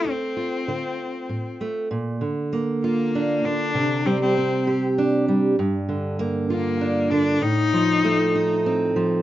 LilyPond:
<<
  \new Staff \with { instrumentName = "Cello" } { \time 3/4 \key bes \major \tempo 4 = 98 c'2~ c'8 r8 | r4. bes4 d'8~ | d'8 c'16 c'4 r4 r16 | r4. bes4 d'8 |
ees'2 r4 | }
  \new Staff \with { instrumentName = "Steel-string acoustic guitar" } { \clef bass \time 3/4 \key bes \major << { r8 f'8 c'4. a8 | r4 bes8 f'8 d'4 | r4 c'8 g'8 d'4 | r4 bes8 f'8 d'4 |
r4 a8 ees'8 c'4 | } \\ { d,4 d4 a,4 | bes,8 d2 d8 | c8 g2 g8 | g,8 d2 d8 |
a,8 f2 f8 | } >> }
>>